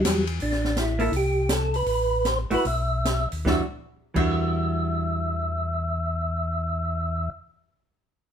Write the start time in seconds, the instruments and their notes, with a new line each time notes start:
Already playing: tonewheel organ F#3 G3
0.05 tonewheel organ E2, snare, hi-hat pedal, ride
0.27 ride
0.40 tonewheel organ A1 D4, open hi-hat
0.52 snare
0.65 snare
0.77 tonewheel organ E4, snare, closed hi-hat
0.99 hollow-body jazz guitar A#3 E4 A4, open hi-hat
1.12 tonewheel organ C2, open hi-hat
1.16 tonewheel organ G4
1.49 tonewheel organ A4, snare, closed hi-hat
1.74 tonewheel organ B4, open hi-hat
1.86 tonewheel organ A1, open hi-hat
2.25 tonewheel organ C5, snare, closed hi-hat
2.50 tonewheel organ A1 B4, hollow-body jazz guitar A3 E4 F#4, open hi-hat
2.65 tonewheel organ B1 E5, open hi-hat
3.05 snare, closed hi-hat
3.32 tonewheel organ D#2, open hi-hat
3.45 tonewheel organ E2 E5, hollow-body jazz guitar E3 G3 D4 F#4, kick, snare
4.14 tonewheel organ E2 E5, hollow-body jazz guitar E3 G3 D4 F#4, kick, crash